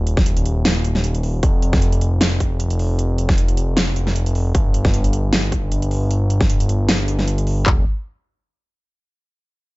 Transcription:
0.00 1.41 D#1 medium
0.07 closed hi-hat medium
0.17 kick loud
0.17 snare soft
0.26 closed hi-hat medium
0.37 closed hi-hat medium
0.46 closed hi-hat medium
0.65 snare loud
0.65 closed hi-hat medium
0.85 closed hi-hat medium
0.95 snare soft
1.04 closed hi-hat medium
1.15 closed hi-hat medium
1.23 open hi-hat medium
1.43 4.53 F1 medium
1.43 kick loud
1.43 closed hi-hat medium
1.62 closed hi-hat medium
1.73 kick loud
1.73 snare soft
1.82 closed hi-hat medium
1.92 closed hi-hat medium
2.01 closed hi-hat medium
2.21 snare loud
2.21 closed hi-hat medium
2.40 kick medium
2.40 closed hi-hat medium
2.60 closed hi-hat medium
2.70 closed hi-hat medium
2.79 open hi-hat medium
2.99 closed hi-hat medium
3.18 closed hi-hat medium
3.29 kick loud
3.29 snare soft
3.38 closed hi-hat medium
3.48 closed hi-hat medium
3.57 closed hi-hat medium
3.77 snare loud
3.77 closed hi-hat medium
3.96 closed hi-hat medium
4.07 snare soft
4.16 closed hi-hat medium
4.26 closed hi-hat medium
4.35 open hi-hat medium
4.55 7.65 G1 medium
4.55 kick loud
4.55 closed hi-hat medium
4.74 closed hi-hat medium
4.85 kick loud
4.85 snare soft
4.94 closed hi-hat medium
5.04 closed hi-hat medium
5.13 closed hi-hat medium
5.33 snare loud
5.33 closed hi-hat medium
5.52 kick medium
5.52 closed hi-hat medium
5.72 closed hi-hat medium
5.82 closed hi-hat medium
5.91 open hi-hat medium
6.11 closed hi-hat medium
6.30 closed hi-hat medium
6.41 kick loud
6.41 snare soft
6.50 closed hi-hat medium
6.60 closed hi-hat medium
6.69 closed hi-hat medium
6.89 snare loud
6.89 closed hi-hat medium
7.08 closed hi-hat medium
7.19 snare soft
7.28 closed hi-hat medium
7.38 closed hi-hat medium
7.47 open hi-hat loud
7.66 7.84 F1 loud
7.66 kick loud
7.66 clap loud
7.66 floor tom loud

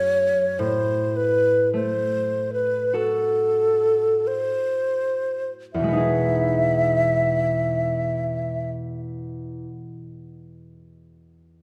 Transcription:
0.00 0.28 F#2 soft
0.00 1.28 A3 soft
0.00 2.33 F#4 soft
0.00 0.64 G#4 soft
0.00 0.61 C#5 medium
0.59 4.49 A2 soft
0.59 1.18 C5 medium
1.16 1.73 B4 medium
1.74 5.63 A3 soft
1.74 2.51 C5 medium
2.53 2.97 B4 medium
2.93 5.81 F#4 soft
2.93 5.81 A4 soft
2.93 4.29 A4 medium
4.27 5.50 C5 medium
5.73 9.64 E2 soft
5.73 8.71 E5 medium
5.79 9.69 B2 soft
5.83 9.28 G#3 soft
5.88 8.99 B3 soft
5.93 8.91 D#4 soft
5.97 8.95 G#4 soft

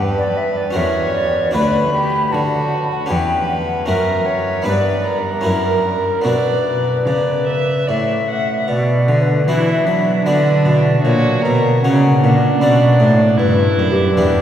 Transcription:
0.00 0.71 G2 medium
0.00 0.72 G2 soft
0.00 0.69 C#4 soft
0.00 0.70 G4 soft
0.00 0.71 B4 soft
0.00 0.77 B4 medium
0.18 0.38 D5 medium
0.37 0.58 E5 medium
0.57 0.75 D5 medium
0.71 1.50 C#4 soft
0.71 1.51 F#4 soft
0.71 1.51 A#4 soft
0.76 1.51 E2 soft
0.76 1.51 E2 medium
0.76 1.55 C#5 medium
0.76 1.14 E5 medium
1.15 1.54 D5 medium
1.51 2.29 D2 medium
1.51 3.05 D4 soft
1.51 3.06 F#4 soft
1.51 3.06 B4 soft
1.51 2.34 B5 medium
1.55 2.29 D2 soft
1.55 1.93 B4 medium
1.94 2.34 G4 medium
2.32 3.07 D3 medium
2.32 3.08 D3 soft
2.32 3.10 F#4 soft
2.32 2.90 A5 medium
2.91 3.09 F#5 medium
3.06 3.84 C#4 soft
3.06 3.84 G4 soft
3.06 3.85 C#5 soft
3.06 3.48 G5 medium
3.10 3.84 E2 soft
3.10 3.84 E2 medium
3.10 3.88 B4 medium
3.48 3.87 F#5 medium
3.86 4.62 F#2 medium
3.86 4.63 C#4 soft
3.86 4.63 F#4 soft
3.86 4.27 A#4 soft
3.86 4.64 A#4 soft
3.86 4.64 E5 medium
3.90 4.63 F#2 soft
4.26 4.66 C#5 medium
4.62 5.41 B3 soft
4.62 5.41 D4 soft
4.62 5.06 B4 medium
4.62 5.42 B4 soft
4.66 5.41 G2 soft
4.66 5.41 G2 medium
4.66 5.16 D5 medium
5.04 6.24 A#4 medium
5.41 6.21 C#4 soft
5.41 6.22 E4 soft
5.41 6.23 F#4 soft
5.45 6.22 F#2 soft
5.45 6.22 F#2 medium
5.45 6.27 A#4 medium
6.22 7.02 B2 medium
6.22 8.62 B3 soft
6.22 8.64 D4 soft
6.22 8.64 F#4 soft
6.22 7.88 B4 medium
6.22 6.96 D5 medium
6.26 7.03 B2 soft
7.06 7.84 C#3 medium
7.06 7.85 C#3 soft
7.06 7.44 D5 soft
7.47 7.89 E5 medium
7.88 8.65 A2 soft
7.88 8.65 A2 medium
7.88 8.28 D5 soft
7.88 8.71 E5 medium
8.29 8.68 F#5 soft
8.68 9.04 B2 soft
8.68 9.09 B2 medium
8.68 9.23 D5 medium
9.08 9.46 D3 medium
9.08 9.43 D3 soft
9.22 9.72 B4 medium
9.47 9.85 E3 medium
9.47 9.83 E3 soft
9.47 10.04 B3 soft
9.47 10.04 D4 soft
9.47 9.87 E4 medium
9.47 10.04 F#4 soft
9.72 10.28 E5 medium
9.85 10.24 F#3 medium
9.85 10.22 F#3 soft
9.85 11.02 D4 medium
10.26 10.66 D3 medium
10.26 10.61 D3 soft
10.26 10.82 B3 soft
10.26 10.82 D4 soft
10.26 10.82 F#4 soft
10.26 11.03 D5 medium
10.65 11.03 B2 medium
10.65 11.00 B2 soft
11.02 11.43 A#2 medium
11.02 11.40 A#2 soft
11.02 11.44 F#4 medium
11.02 11.53 C#5 medium
11.42 11.83 B2 medium
11.42 11.80 B2 soft
11.42 11.82 A#4 medium
11.83 12.22 C#3 medium
11.83 12.19 C#3 soft
11.83 12.21 C#4 soft
11.83 12.40 C#4 soft
11.83 12.41 F#4 soft
11.83 12.59 F#5 loud
12.21 12.60 A#2 medium
12.21 12.58 A#2 soft
12.21 13.39 D4 medium
12.60 12.99 B2 medium
12.60 12.96 B2 soft
12.60 13.34 B3 soft
12.60 13.35 D4 soft
12.60 13.35 F#4 soft
12.60 13.36 D5 medium
13.00 13.35 A2 medium
13.00 13.38 A2 medium
13.37 13.77 G2 medium
13.37 13.74 G2 soft
13.37 14.15 E4 medium
13.37 13.89 B4 medium
13.77 14.17 F#2 medium
13.77 14.13 F#2 soft
13.91 14.41 G4 medium
14.16 14.42 E2 medium
14.16 14.42 E2 soft
14.16 14.42 B3 soft
14.16 14.42 D4 medium
14.16 14.42 D4 soft
14.16 14.42 G4 soft

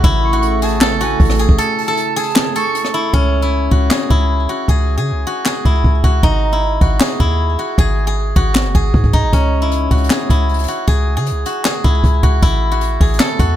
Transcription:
0.00 1.16 A1 loud
0.00 3.10 C#3 medium
0.00 3.10 A3 medium
0.00 3.10 E4 medium
0.00 2.65 E4 loud
0.00 0.33 F#4 medium
0.00 0.62 G#4 medium
0.00 kick loud
0.00 closed hi-hat medium
0.23 0.60 C#6 medium
0.33 1.00 F#4 medium
0.42 closed hi-hat medium
0.62 0.87 G#4 medium
0.62 0.98 A5 medium
0.62 closed hi-hat medium
0.68 closed hi-hat medium
0.75 closed hi-hat soft
0.81 1.45 A4 medium
0.81 snare loud
0.81 clap loud
1.01 3.44 F#4 medium
1.01 1.19 G#5 medium
1.01 closed hi-hat medium
1.20 1.48 A1 loud
1.20 kick loud
1.20 closed hi-hat medium
1.25 closed hi-hat medium
1.30 cross-stick loud
1.30 closed hi-hat medium
1.35 closed hi-hat medium
1.39 1.64 G#4 medium
1.39 closed hi-hat medium
1.49 1.58 A1 loud
1.49 kick loud
1.58 1.87 A4 loud
1.58 closed hi-hat medium
1.78 2.14 A5 medium
1.78 open hi-hat medium
1.88 2.22 A4 medium
1.97 closed hi-hat medium
2.16 2.62 G#4 loud
2.16 2.53 A5 medium
2.16 closed hi-hat medium
2.23 closed hi-hat medium
2.30 closed hi-hat soft
2.36 snare loud
2.36 clap loud
2.56 3.97 A4 medium
2.56 3.10 C#6 medium
2.56 closed hi-hat medium
2.75 closed hi-hat medium
2.85 cross-stick medium
2.85 closed hi-hat soft
2.94 3.42 E4 medium
3.14 3.69 C#2 loud
3.14 6.03 C#4 loud
3.14 kick loud
3.42 4.10 E4 medium
3.71 3.90 C#2 loud
3.71 4.49 F#4 medium
3.71 kick medium
3.91 4.68 G#4 medium
3.91 snare loud
3.91 clap medium
4.10 4.47 C#2 loud
4.10 5.65 E4 medium
4.10 kick medium
4.49 5.26 F#4 medium
4.68 4.99 C#2 loud
4.68 4.97 G#4 medium
4.68 kick loud
4.97 5.13 C#3 loud
4.97 5.46 G#4 medium
5.12 5.26 C#2 loud
5.27 6.04 F#4 medium
5.45 7.01 G#4 medium
5.45 snare loud
5.45 clap medium
5.65 5.84 C#2 loud
5.65 6.29 E4 medium
5.65 kick medium
5.84 6.03 C#2 loud
5.84 kick loud
6.04 6.22 C#2 loud
6.04 6.81 F#4 medium
6.04 kick medium
6.23 6.79 G#1 loud
6.23 6.59 D#4 loud
6.23 kick loud
6.53 7.20 E4 medium
6.81 7.00 G#1 loud
6.81 7.58 F#4 medium
6.81 kick medium
7.00 7.78 G#4 medium
7.00 snare loud
7.00 clap medium
7.20 7.57 D#2 loud
7.20 9.19 E4 medium
7.20 kick medium
7.59 8.36 F#4 medium
7.78 8.34 G#1 loud
7.78 8.07 G#4 loud
7.78 kick loud
8.07 8.74 G#4 medium
8.36 8.67 G#1 loud
8.36 9.91 F#4 medium
8.36 kick medium
8.55 snare loud
8.55 clap medium
8.65 8.74 F#1 loud
8.75 8.93 G#1 loud
8.75 10.10 G#4 medium
8.75 kick medium
8.94 9.25 G#2 loud
8.94 kick loud
9.04 kick medium
9.13 9.68 D#4 medium
9.13 kick medium
9.23 9.32 A1 loud
9.33 9.89 C#2 loud
9.33 12.23 C#4 loud
9.33 kick loud
9.33 closed hi-hat medium
9.62 10.30 E4 medium
9.71 closed hi-hat medium
9.91 10.10 C#2 loud
9.91 10.68 F#4 medium
9.91 kick medium
9.91 closed hi-hat medium
9.91 open hi-hat medium
9.97 closed hi-hat medium
10.04 closed hi-hat medium
10.10 10.87 G#4 medium
10.10 snare loud
10.10 clap medium
10.30 10.67 C#2 loud
10.30 11.84 E4 medium
10.30 kick medium
10.30 closed hi-hat medium
10.49 closed hi-hat soft
10.54 closed hi-hat medium
10.59 closed hi-hat medium
10.64 closed hi-hat medium
10.68 11.46 F#4 medium
10.68 closed hi-hat medium
10.88 11.18 C#2 loud
10.88 11.16 G#4 medium
10.88 kick loud
10.88 closed hi-hat medium
11.17 11.33 C#3 loud
11.17 11.65 G#4 medium
11.26 closed hi-hat medium
11.31 11.45 C#2 medium
11.46 12.23 F#4 medium
11.46 closed hi-hat medium
11.65 13.00 G#4 medium
11.65 snare loud
11.65 clap loud
11.84 12.03 C#2 loud
11.84 12.42 E4 medium
11.84 kick medium
11.84 closed hi-hat medium
12.04 12.22 C#2 loud
12.04 kick loud
12.04 closed hi-hat medium
12.23 12.42 C#2 loud
12.23 12.71 F#4 medium
12.23 kick medium
12.42 12.98 A1 loud
12.42 13.56 E4 loud
12.42 kick loud
12.42 closed hi-hat medium
12.72 13.39 F#4 medium
12.81 closed hi-hat medium
13.01 13.19 A1 loud
13.01 13.26 G#4 medium
13.01 kick medium
13.01 closed hi-hat medium
13.07 closed hi-hat medium
13.14 closed hi-hat medium
13.20 13.56 A4 medium
13.20 snare loud
13.20 clap medium
13.39 13.56 E2 loud
13.39 13.56 F#4 medium
13.39 kick medium
13.39 closed hi-hat medium

